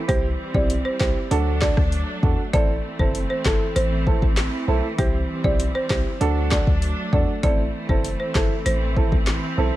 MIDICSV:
0, 0, Header, 1, 6, 480
1, 0, Start_track
1, 0, Tempo, 612245
1, 68, Time_signature, 4, 2, 24, 8
1, 7655, End_track
2, 0, Start_track
2, 0, Title_t, "Marimba"
2, 0, Program_c, 0, 12
2, 68, Note_on_c, 0, 72, 101
2, 152, Note_off_c, 0, 72, 0
2, 428, Note_on_c, 0, 74, 83
2, 512, Note_off_c, 0, 74, 0
2, 667, Note_on_c, 0, 72, 85
2, 752, Note_off_c, 0, 72, 0
2, 787, Note_on_c, 0, 72, 84
2, 872, Note_off_c, 0, 72, 0
2, 1266, Note_on_c, 0, 74, 81
2, 1351, Note_off_c, 0, 74, 0
2, 1987, Note_on_c, 0, 74, 106
2, 2071, Note_off_c, 0, 74, 0
2, 2348, Note_on_c, 0, 72, 85
2, 2432, Note_off_c, 0, 72, 0
2, 2588, Note_on_c, 0, 72, 80
2, 2672, Note_off_c, 0, 72, 0
2, 2708, Note_on_c, 0, 69, 84
2, 2792, Note_off_c, 0, 69, 0
2, 2947, Note_on_c, 0, 72, 115
2, 3286, Note_off_c, 0, 72, 0
2, 3909, Note_on_c, 0, 72, 93
2, 3993, Note_off_c, 0, 72, 0
2, 4268, Note_on_c, 0, 74, 89
2, 4352, Note_off_c, 0, 74, 0
2, 4509, Note_on_c, 0, 72, 85
2, 4593, Note_off_c, 0, 72, 0
2, 4629, Note_on_c, 0, 72, 92
2, 4713, Note_off_c, 0, 72, 0
2, 5109, Note_on_c, 0, 74, 75
2, 5193, Note_off_c, 0, 74, 0
2, 5588, Note_on_c, 0, 74, 85
2, 5672, Note_off_c, 0, 74, 0
2, 5828, Note_on_c, 0, 74, 111
2, 5912, Note_off_c, 0, 74, 0
2, 6189, Note_on_c, 0, 72, 82
2, 6273, Note_off_c, 0, 72, 0
2, 6428, Note_on_c, 0, 72, 75
2, 6512, Note_off_c, 0, 72, 0
2, 6548, Note_on_c, 0, 69, 85
2, 6632, Note_off_c, 0, 69, 0
2, 6788, Note_on_c, 0, 72, 94
2, 7126, Note_off_c, 0, 72, 0
2, 7655, End_track
3, 0, Start_track
3, 0, Title_t, "Grand piano"
3, 0, Program_c, 1, 0
3, 64, Note_on_c, 1, 60, 100
3, 66, Note_on_c, 1, 64, 94
3, 68, Note_on_c, 1, 67, 114
3, 197, Note_off_c, 1, 60, 0
3, 199, Note_off_c, 1, 64, 0
3, 200, Note_off_c, 1, 67, 0
3, 425, Note_on_c, 1, 60, 81
3, 427, Note_on_c, 1, 64, 74
3, 429, Note_on_c, 1, 67, 87
3, 558, Note_off_c, 1, 60, 0
3, 559, Note_off_c, 1, 64, 0
3, 560, Note_off_c, 1, 67, 0
3, 786, Note_on_c, 1, 60, 81
3, 788, Note_on_c, 1, 64, 73
3, 790, Note_on_c, 1, 67, 91
3, 918, Note_off_c, 1, 60, 0
3, 919, Note_off_c, 1, 64, 0
3, 921, Note_off_c, 1, 67, 0
3, 1026, Note_on_c, 1, 62, 99
3, 1028, Note_on_c, 1, 66, 90
3, 1030, Note_on_c, 1, 69, 109
3, 1248, Note_off_c, 1, 62, 0
3, 1249, Note_off_c, 1, 66, 0
3, 1250, Note_off_c, 1, 69, 0
3, 1266, Note_on_c, 1, 62, 79
3, 1268, Note_on_c, 1, 66, 73
3, 1271, Note_on_c, 1, 69, 88
3, 1398, Note_off_c, 1, 62, 0
3, 1400, Note_off_c, 1, 66, 0
3, 1401, Note_off_c, 1, 69, 0
3, 1746, Note_on_c, 1, 62, 81
3, 1748, Note_on_c, 1, 66, 73
3, 1751, Note_on_c, 1, 69, 89
3, 1879, Note_off_c, 1, 62, 0
3, 1880, Note_off_c, 1, 66, 0
3, 1881, Note_off_c, 1, 69, 0
3, 1985, Note_on_c, 1, 60, 104
3, 1989, Note_on_c, 1, 64, 87
3, 1991, Note_on_c, 1, 69, 114
3, 2118, Note_off_c, 1, 60, 0
3, 2120, Note_off_c, 1, 64, 0
3, 2121, Note_off_c, 1, 69, 0
3, 2346, Note_on_c, 1, 60, 80
3, 2348, Note_on_c, 1, 64, 72
3, 2350, Note_on_c, 1, 69, 87
3, 2478, Note_off_c, 1, 60, 0
3, 2480, Note_off_c, 1, 64, 0
3, 2481, Note_off_c, 1, 69, 0
3, 2707, Note_on_c, 1, 60, 79
3, 2709, Note_on_c, 1, 64, 73
3, 2712, Note_on_c, 1, 69, 90
3, 2839, Note_off_c, 1, 60, 0
3, 2840, Note_off_c, 1, 64, 0
3, 2841, Note_off_c, 1, 69, 0
3, 3187, Note_on_c, 1, 60, 78
3, 3189, Note_on_c, 1, 64, 70
3, 3193, Note_on_c, 1, 69, 90
3, 3319, Note_off_c, 1, 60, 0
3, 3320, Note_off_c, 1, 64, 0
3, 3322, Note_off_c, 1, 69, 0
3, 3666, Note_on_c, 1, 60, 82
3, 3668, Note_on_c, 1, 64, 75
3, 3671, Note_on_c, 1, 69, 90
3, 3799, Note_off_c, 1, 60, 0
3, 3800, Note_off_c, 1, 64, 0
3, 3801, Note_off_c, 1, 69, 0
3, 3907, Note_on_c, 1, 60, 101
3, 3909, Note_on_c, 1, 64, 88
3, 3911, Note_on_c, 1, 67, 107
3, 4039, Note_off_c, 1, 60, 0
3, 4040, Note_off_c, 1, 64, 0
3, 4041, Note_off_c, 1, 67, 0
3, 4265, Note_on_c, 1, 60, 78
3, 4267, Note_on_c, 1, 64, 72
3, 4269, Note_on_c, 1, 67, 88
3, 4398, Note_off_c, 1, 60, 0
3, 4399, Note_off_c, 1, 64, 0
3, 4400, Note_off_c, 1, 67, 0
3, 4625, Note_on_c, 1, 60, 81
3, 4628, Note_on_c, 1, 64, 74
3, 4631, Note_on_c, 1, 67, 91
3, 4758, Note_off_c, 1, 60, 0
3, 4760, Note_off_c, 1, 64, 0
3, 4761, Note_off_c, 1, 67, 0
3, 4866, Note_on_c, 1, 62, 102
3, 4867, Note_on_c, 1, 66, 87
3, 4871, Note_on_c, 1, 69, 109
3, 5088, Note_off_c, 1, 62, 0
3, 5089, Note_off_c, 1, 66, 0
3, 5090, Note_off_c, 1, 69, 0
3, 5107, Note_on_c, 1, 62, 81
3, 5109, Note_on_c, 1, 66, 70
3, 5112, Note_on_c, 1, 69, 87
3, 5239, Note_off_c, 1, 62, 0
3, 5240, Note_off_c, 1, 66, 0
3, 5242, Note_off_c, 1, 69, 0
3, 5587, Note_on_c, 1, 62, 83
3, 5589, Note_on_c, 1, 66, 72
3, 5591, Note_on_c, 1, 69, 88
3, 5719, Note_off_c, 1, 62, 0
3, 5720, Note_off_c, 1, 66, 0
3, 5721, Note_off_c, 1, 69, 0
3, 5828, Note_on_c, 1, 60, 99
3, 5830, Note_on_c, 1, 64, 90
3, 5832, Note_on_c, 1, 69, 108
3, 5960, Note_off_c, 1, 60, 0
3, 5960, Note_off_c, 1, 64, 0
3, 5962, Note_off_c, 1, 69, 0
3, 6188, Note_on_c, 1, 60, 77
3, 6190, Note_on_c, 1, 64, 73
3, 6192, Note_on_c, 1, 69, 89
3, 6319, Note_off_c, 1, 60, 0
3, 6320, Note_off_c, 1, 64, 0
3, 6322, Note_off_c, 1, 69, 0
3, 6549, Note_on_c, 1, 60, 84
3, 6551, Note_on_c, 1, 64, 75
3, 6553, Note_on_c, 1, 69, 92
3, 6680, Note_off_c, 1, 60, 0
3, 6681, Note_off_c, 1, 64, 0
3, 6682, Note_off_c, 1, 69, 0
3, 7027, Note_on_c, 1, 60, 82
3, 7029, Note_on_c, 1, 64, 74
3, 7032, Note_on_c, 1, 69, 88
3, 7159, Note_off_c, 1, 60, 0
3, 7160, Note_off_c, 1, 64, 0
3, 7162, Note_off_c, 1, 69, 0
3, 7507, Note_on_c, 1, 60, 79
3, 7509, Note_on_c, 1, 64, 72
3, 7511, Note_on_c, 1, 69, 89
3, 7639, Note_off_c, 1, 60, 0
3, 7640, Note_off_c, 1, 64, 0
3, 7641, Note_off_c, 1, 69, 0
3, 7655, End_track
4, 0, Start_track
4, 0, Title_t, "String section"
4, 0, Program_c, 2, 48
4, 0, Note_on_c, 2, 52, 86
4, 67, Note_on_c, 2, 55, 74
4, 68, Note_on_c, 2, 60, 92
4, 1000, Note_off_c, 2, 52, 0
4, 1018, Note_off_c, 2, 55, 0
4, 1018, Note_off_c, 2, 60, 0
4, 1027, Note_on_c, 2, 54, 85
4, 1027, Note_on_c, 2, 62, 92
4, 1028, Note_on_c, 2, 57, 77
4, 1978, Note_off_c, 2, 54, 0
4, 1978, Note_off_c, 2, 62, 0
4, 1989, Note_on_c, 2, 52, 85
4, 1989, Note_on_c, 2, 60, 91
4, 3879, Note_off_c, 2, 57, 0
4, 3889, Note_off_c, 2, 60, 0
4, 3908, Note_on_c, 2, 55, 76
4, 3908, Note_on_c, 2, 60, 90
4, 4840, Note_off_c, 2, 52, 0
4, 4858, Note_off_c, 2, 60, 0
4, 4859, Note_off_c, 2, 55, 0
4, 4868, Note_on_c, 2, 54, 82
4, 4868, Note_on_c, 2, 57, 79
4, 4868, Note_on_c, 2, 62, 92
4, 5818, Note_off_c, 2, 54, 0
4, 5818, Note_off_c, 2, 62, 0
4, 5826, Note_on_c, 2, 52, 89
4, 5827, Note_on_c, 2, 60, 91
4, 7655, Note_off_c, 2, 52, 0
4, 7655, Note_off_c, 2, 57, 0
4, 7655, Note_off_c, 2, 60, 0
4, 7655, End_track
5, 0, Start_track
5, 0, Title_t, "808-style bass"
5, 0, Program_c, 3, 38
5, 68, Note_on_c, 3, 36, 107
5, 274, Note_off_c, 3, 36, 0
5, 426, Note_on_c, 3, 35, 95
5, 633, Note_off_c, 3, 35, 0
5, 787, Note_on_c, 3, 36, 93
5, 890, Note_off_c, 3, 36, 0
5, 1028, Note_on_c, 3, 38, 108
5, 1337, Note_off_c, 3, 38, 0
5, 1390, Note_on_c, 3, 38, 93
5, 1596, Note_off_c, 3, 38, 0
5, 1748, Note_on_c, 3, 40, 100
5, 1851, Note_off_c, 3, 40, 0
5, 1988, Note_on_c, 3, 33, 113
5, 2194, Note_off_c, 3, 33, 0
5, 2347, Note_on_c, 3, 30, 95
5, 2553, Note_off_c, 3, 30, 0
5, 2708, Note_on_c, 3, 31, 89
5, 2811, Note_off_c, 3, 31, 0
5, 2948, Note_on_c, 3, 33, 105
5, 3257, Note_off_c, 3, 33, 0
5, 3311, Note_on_c, 3, 33, 87
5, 3516, Note_off_c, 3, 33, 0
5, 3668, Note_on_c, 3, 35, 102
5, 3771, Note_off_c, 3, 35, 0
5, 3909, Note_on_c, 3, 36, 111
5, 4115, Note_off_c, 3, 36, 0
5, 4266, Note_on_c, 3, 35, 101
5, 4473, Note_off_c, 3, 35, 0
5, 4627, Note_on_c, 3, 36, 102
5, 4730, Note_off_c, 3, 36, 0
5, 4868, Note_on_c, 3, 38, 107
5, 5177, Note_off_c, 3, 38, 0
5, 5230, Note_on_c, 3, 38, 95
5, 5435, Note_off_c, 3, 38, 0
5, 5588, Note_on_c, 3, 40, 96
5, 5691, Note_off_c, 3, 40, 0
5, 5828, Note_on_c, 3, 33, 117
5, 6034, Note_off_c, 3, 33, 0
5, 6186, Note_on_c, 3, 30, 92
5, 6393, Note_off_c, 3, 30, 0
5, 6547, Note_on_c, 3, 31, 89
5, 6651, Note_off_c, 3, 31, 0
5, 6789, Note_on_c, 3, 33, 108
5, 7098, Note_off_c, 3, 33, 0
5, 7151, Note_on_c, 3, 33, 92
5, 7356, Note_off_c, 3, 33, 0
5, 7508, Note_on_c, 3, 35, 100
5, 7611, Note_off_c, 3, 35, 0
5, 7655, End_track
6, 0, Start_track
6, 0, Title_t, "Drums"
6, 68, Note_on_c, 9, 36, 116
6, 68, Note_on_c, 9, 42, 67
6, 147, Note_off_c, 9, 36, 0
6, 147, Note_off_c, 9, 42, 0
6, 426, Note_on_c, 9, 36, 95
6, 504, Note_off_c, 9, 36, 0
6, 548, Note_on_c, 9, 42, 84
6, 626, Note_off_c, 9, 42, 0
6, 787, Note_on_c, 9, 36, 104
6, 788, Note_on_c, 9, 38, 119
6, 789, Note_on_c, 9, 39, 98
6, 865, Note_off_c, 9, 36, 0
6, 867, Note_off_c, 9, 38, 0
6, 868, Note_off_c, 9, 39, 0
6, 1028, Note_on_c, 9, 42, 76
6, 1107, Note_off_c, 9, 42, 0
6, 1267, Note_on_c, 9, 38, 126
6, 1268, Note_on_c, 9, 36, 101
6, 1268, Note_on_c, 9, 39, 101
6, 1346, Note_off_c, 9, 38, 0
6, 1347, Note_off_c, 9, 36, 0
6, 1347, Note_off_c, 9, 39, 0
6, 1389, Note_on_c, 9, 37, 102
6, 1391, Note_on_c, 9, 36, 97
6, 1467, Note_off_c, 9, 37, 0
6, 1469, Note_off_c, 9, 36, 0
6, 1507, Note_on_c, 9, 42, 65
6, 1586, Note_off_c, 9, 42, 0
6, 1748, Note_on_c, 9, 36, 102
6, 1826, Note_off_c, 9, 36, 0
6, 1988, Note_on_c, 9, 42, 66
6, 1989, Note_on_c, 9, 36, 118
6, 2066, Note_off_c, 9, 42, 0
6, 2067, Note_off_c, 9, 36, 0
6, 2346, Note_on_c, 9, 36, 91
6, 2425, Note_off_c, 9, 36, 0
6, 2468, Note_on_c, 9, 42, 82
6, 2546, Note_off_c, 9, 42, 0
6, 2708, Note_on_c, 9, 36, 105
6, 2709, Note_on_c, 9, 38, 119
6, 2710, Note_on_c, 9, 39, 93
6, 2786, Note_off_c, 9, 36, 0
6, 2787, Note_off_c, 9, 38, 0
6, 2788, Note_off_c, 9, 39, 0
6, 2948, Note_on_c, 9, 42, 79
6, 3027, Note_off_c, 9, 42, 0
6, 3188, Note_on_c, 9, 36, 102
6, 3267, Note_off_c, 9, 36, 0
6, 3310, Note_on_c, 9, 36, 92
6, 3389, Note_off_c, 9, 36, 0
6, 3428, Note_on_c, 9, 38, 112
6, 3428, Note_on_c, 9, 42, 66
6, 3429, Note_on_c, 9, 39, 92
6, 3506, Note_off_c, 9, 42, 0
6, 3507, Note_off_c, 9, 38, 0
6, 3508, Note_off_c, 9, 39, 0
6, 3908, Note_on_c, 9, 42, 68
6, 3909, Note_on_c, 9, 36, 117
6, 3987, Note_off_c, 9, 36, 0
6, 3987, Note_off_c, 9, 42, 0
6, 4266, Note_on_c, 9, 36, 93
6, 4345, Note_off_c, 9, 36, 0
6, 4388, Note_on_c, 9, 42, 84
6, 4466, Note_off_c, 9, 42, 0
6, 4627, Note_on_c, 9, 36, 104
6, 4629, Note_on_c, 9, 38, 120
6, 4630, Note_on_c, 9, 39, 99
6, 4705, Note_off_c, 9, 36, 0
6, 4707, Note_off_c, 9, 38, 0
6, 4708, Note_off_c, 9, 39, 0
6, 4868, Note_on_c, 9, 42, 77
6, 4947, Note_off_c, 9, 42, 0
6, 5107, Note_on_c, 9, 38, 127
6, 5108, Note_on_c, 9, 36, 100
6, 5108, Note_on_c, 9, 39, 102
6, 5186, Note_off_c, 9, 38, 0
6, 5187, Note_off_c, 9, 36, 0
6, 5187, Note_off_c, 9, 39, 0
6, 5230, Note_on_c, 9, 36, 95
6, 5309, Note_off_c, 9, 36, 0
6, 5348, Note_on_c, 9, 42, 66
6, 5426, Note_off_c, 9, 42, 0
6, 5588, Note_on_c, 9, 36, 98
6, 5667, Note_off_c, 9, 36, 0
6, 5827, Note_on_c, 9, 42, 68
6, 5828, Note_on_c, 9, 36, 120
6, 5906, Note_off_c, 9, 42, 0
6, 5907, Note_off_c, 9, 36, 0
6, 6186, Note_on_c, 9, 36, 89
6, 6265, Note_off_c, 9, 36, 0
6, 6307, Note_on_c, 9, 42, 82
6, 6386, Note_off_c, 9, 42, 0
6, 6547, Note_on_c, 9, 36, 108
6, 6549, Note_on_c, 9, 38, 121
6, 6550, Note_on_c, 9, 39, 92
6, 6626, Note_off_c, 9, 36, 0
6, 6627, Note_off_c, 9, 38, 0
6, 6628, Note_off_c, 9, 39, 0
6, 6788, Note_on_c, 9, 42, 81
6, 6867, Note_off_c, 9, 42, 0
6, 7029, Note_on_c, 9, 36, 98
6, 7107, Note_off_c, 9, 36, 0
6, 7151, Note_on_c, 9, 36, 96
6, 7229, Note_off_c, 9, 36, 0
6, 7268, Note_on_c, 9, 42, 69
6, 7269, Note_on_c, 9, 38, 111
6, 7270, Note_on_c, 9, 39, 94
6, 7347, Note_off_c, 9, 38, 0
6, 7347, Note_off_c, 9, 42, 0
6, 7348, Note_off_c, 9, 39, 0
6, 7655, End_track
0, 0, End_of_file